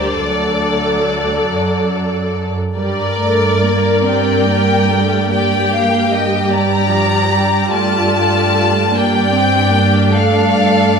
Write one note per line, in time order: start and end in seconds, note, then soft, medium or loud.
0.00 0.17 D2 soft
0.00 0.21 G3 soft
0.00 0.17 G4 soft
0.00 0.21 A#4 soft
0.00 0.17 C5 soft
0.00 2.33 D5 soft
0.20 1.45 D2 soft
0.20 2.55 F#3 soft
0.20 2.51 A4 soft
0.20 2.55 A4 soft
0.20 2.55 D5 soft
1.47 2.53 F#2 soft
2.76 7.70 G2 soft
2.76 3.17 G3 soft
2.76 4.05 A#4 soft
2.76 5.27 A#4 soft
2.76 5.27 D5 soft
2.76 4.05 D5 soft
3.20 3.64 A3 soft
3.65 4.09 A#3 soft
4.08 4.50 C4 soft
4.08 5.31 G4 soft
4.08 5.32 G5 soft
4.49 4.90 A#3 soft
4.90 5.31 A3 soft
5.30 6.52 A#3 soft
5.30 6.51 G4 soft
5.30 8.92 G4 soft
5.30 5.72 D5 soft
5.30 6.51 G5 soft
5.72 6.13 F5 soft
6.12 6.53 D#5 soft
6.52 6.93 G3 soft
6.52 7.71 G4 soft
6.52 7.71 D5 soft
6.52 7.75 A#5 soft
6.92 7.32 F3 soft
7.32 7.72 G3 soft
7.72 10.99 G2 soft
7.72 8.95 A3 soft
7.72 8.92 F4 soft
7.72 8.92 D5 soft
7.72 8.92 A5 soft
8.94 9.34 A#3 soft
8.94 10.99 D4 soft
8.94 10.11 G4 soft
8.94 10.11 D5 soft
8.94 10.13 G5 medium
9.34 9.73 C4 soft
9.73 10.13 A#3 soft
10.12 10.99 A3 soft
10.12 10.99 A4 soft
10.12 10.99 D5 soft
10.12 10.99 F5 soft